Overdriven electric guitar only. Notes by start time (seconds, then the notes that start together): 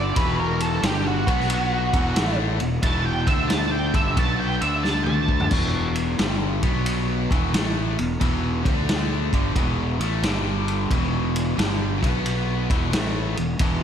Already playing: G2 D3 G3
0.16 E2 B2 E3
0.83 G2 D3 G3
1.26 B2 F#3 B3
1.94 E2 B2 E3
2.17 A2 E3 A3
2.61 E2 B2
2.84 E2 B2 E3
3.27 D3 A3 D4
3.93 G2 D3 G3
4.17 B2 F#3 B3
4.61 D3 A3 D4
5.52 E2 B2 E3
6.18 G2 D3 G3
6.63 B2 F#3 B3
7.31 E2 B2 E3
7.54 A2 E3 A3
7.98 E2 B2
8.20 E2 B2 E3
8.66 D3 A3 D4
9.34 G2 D3 G3
9.56 E2 B2 E3
10.00 A2 E3 A3
10.24 G2 D3 G3
10.91 E2 B2 E3
11.58 G2 D3 G3
12.01 B2 F#3 B3
12.69 E2 B2 E3
12.91 A2 E3 A3
13.36 E2 B2
13.60 E2 B2 E3